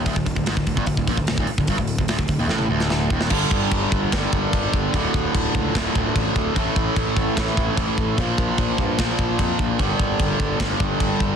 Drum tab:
CC |----------------|----------------|x---x---x---x---|x---x---x---x---|
HH |o-o-o-o-o-o-o-o-|o-o-o-o---------|----------------|----------------|
SD |----o-------o---|----o---o--oo--o|--------o-------|--------o-------|
T1 |----------------|---------o------|----------------|----------------|
BD |oooo-ooooooo-o-o|oo-o-oo-------o-|o-o-o-o-o-o-o-o-|o-o-o-o-o-o-o-o-|

CC |x---x---x---x---|x---x---x---x---|x---x---x---x---|
HH |----------------|----------------|----------------|
SD |--------o-------|--------o-------|--------o-------|
T1 |----------------|----------------|----------------|
BD |o-o-o-o-o-o-o-o-|o-o-o-o-o-o-o-o-|o-o-o-o-o-o-o-o-|